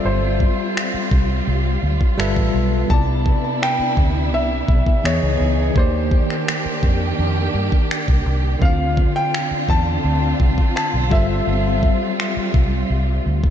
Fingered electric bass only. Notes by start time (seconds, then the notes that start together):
0.05 G1
0.94 muted fingered electric bass stroke
1.11 C2
1.47 C2
1.83 D2
2.18 G1
2.37 A1
2.54 B1
2.90 C2
3.79 muted fingered electric bass stroke
3.97 D2
4.33 C2
4.68 B1
5.04 E2
5.22 C#2
5.40 C#2
5.76 D#2
6.66 muted fingered electric bass stroke
6.83 F2
7.19 F2
7.54 G2
8.08 C2
8.26 C2
8.62 D2
9.51 muted fingered electric bass stroke
9.69 E2
10.04 D2
10.40 C2
10.94 B1
11.11 G1
11.47 G1
12.37 muted fingered electric bass stroke
12.54 C2
12.90 C2
13.26 D2